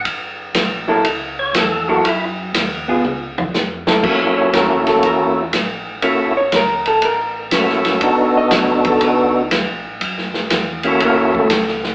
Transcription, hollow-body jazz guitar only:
X:1
M:4/4
L:1/8
Q:"Swing" 1/4=120
K:B
V:1 name="Hollow-body jazz guitar"
z3 [F,A,E=A] z3 [F,^A,E=A] | z3 [B,^EG] z3 [F,A,=E=A] | z c A =A ^A z3 | z c A =A ^A z3 |
z d B =A B z3 | z4 [A,A] [=A,=A]2 z |]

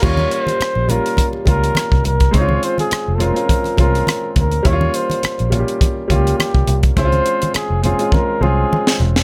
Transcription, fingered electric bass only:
X:1
M:4/4
L:1/16
Q:"Swing 16ths" 1/4=104
K:Ebmix
V:1 name="Fingered electric bass" clef=bass
E,,2 z3 B,,,2 z3 D,,2 z C,, C,,2 | D,,2 z3 F,,,2 z3 C,,2 z2 =D,,2 | E,,2 z3 B,,,2 z3 D,,2 z C,, C,,2 | D,,2 z3 F,,,2 z3 C,,2 z2 _F,,,2 |]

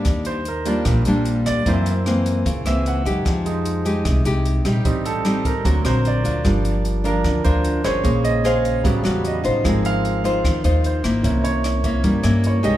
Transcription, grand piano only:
X:1
M:4/4
L:1/8
Q:1/4=150
K:Eb
V:1 name="Grand piano"
z c B2 z3 d | c2 z3 _f _g2 | z6 z G- | G =A2 B2 c d2 |
z3 B2 c2 _d- | _d e f2 z2 e2- | e f3 z2 c2- | c _d3 z2 d e |]
V:2 name="Grand piano"
z3 [G,DF]4- [G,DF] | [B,C_F]8 | z [A,E] z6 | [G,CE] z3 [^F,^A,C] z3 |
[F,B,D] z2 [F,B,D] z4 | [_D,A,]4 [^C,^F,G,=B,] z3 | [F,B,C] z6 z | [=E,B,_D]3 z [E,B,D] z3 |]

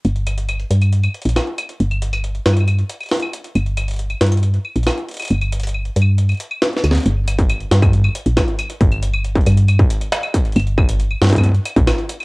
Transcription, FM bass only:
X:1
M:4/4
L:1/16
Q:1/4=137
K:Gm
V:1 name="FM bass" clef=bass
G,,,4- G,,, z G,,3 z2 B,,, z4 | G,,,4- G,,, z G,,3 z6 z | G,,,4- G,,, z G,,3 z2 B,,, z4 | G,,,4- G,,, z G,,3 z4 z D,, z |
G,,,4- G,,, z G,,3 z2 B,,, z4 | G,,,4- G,,, z G,,3 z6 z | G,,,4- G,,, z G,,3 z2 B,,, z4 |]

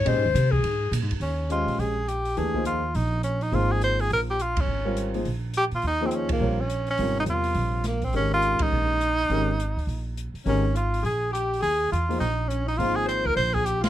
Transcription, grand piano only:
X:1
M:4/4
L:1/8
Q:"Swing" 1/4=207
K:Ebmix
V:1 name="Grand piano"
[A,DGce] z6 z | z2 [A,DGce]3 z3 | [_F,=A,=DG_c] [=F,B,E_A=c]2 z4 z | [F,B,EAc]4- [F,B,EAc] z3 |
z [G,CFBd]2 [F,B,EAc] z4 | z [F,B,EAc]3 [G,CFBd] z3 | [C,G,FBd]4- [C,G,FBd] z3 | [E,A,DGB]4- [E,A,DGB] z3 |
[E,A,DGB] z6 z | [E,A,DGB] z6 z | z3 [F,B,EAc] z4 | [F,B,EAc]4- [F,B,EAc] z3 |]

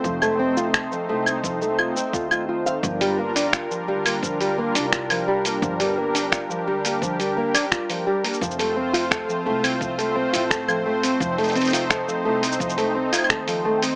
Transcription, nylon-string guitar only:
X:1
M:4/4
L:1/16
Q:1/4=86
K:Gm
V:1 name="Nylon-string guitar"
F, A, C F A F, A, C F, A, F C F F F f | F, G, B, D F F, G, B, F, G, B, D F F, G, B, | F, G, B, D F F, G, B, F, G, B, D F F, G, B, | F, A, C F A F, A, C F, A, C F A F, A, C |
F, A, C F A F, A, C F, A, C F A F, A, C |]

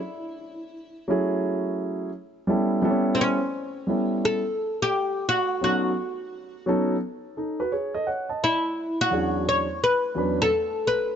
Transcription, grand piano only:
X:1
M:4/4
L:1/16
Q:"Swing 16ths" 1/4=86
K:A
V:1 name="Grand piano"
z6 [F,A,CEG]6 z2 [=G,B,CEA]2 | [=G,B,^B,CEA]2 z4 [G,=B,CEA]2 z8 | [F,B,C^DA]2 z4 [F,B,CDA]2 z2 [DA] [FB] [Gc] [A^d] [cf] [da]- | [^da] z3 [E,,F,B,C=DG]2 z4 [E,,F,B,CDB]2 z4 |]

